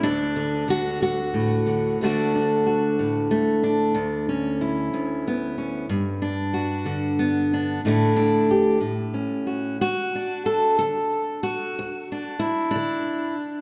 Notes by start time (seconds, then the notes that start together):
0.03 D2 D3 D4
0.36 D3
0.68 D3 F#4
1.02 F#4
1.34 A2
1.66 D3
2.01 D2 D3 A3 D4 F#4
2.35 D4
2.67 F#4
2.99 A2
3.31 A3
3.63 D4
3.95 D2
4.29 C#4
4.61 E4
4.93 D2
5.27 B3
5.58 C#4
5.89 G2
6.22 D4
6.54 F#4
6.85 D3
7.19 B3
7.53 D4
7.85 A2 D3 A3 D4 E4
8.16 D4
8.51 G4
8.80 A2
9.14 C#4
9.47 F#4
9.81 D2 F#4
10.15 D4
10.46 A4
10.79 D3 A4
11.43 F#4
11.79 D2
12.12 D4
12.39 E4
12.71 D4
12.76 D3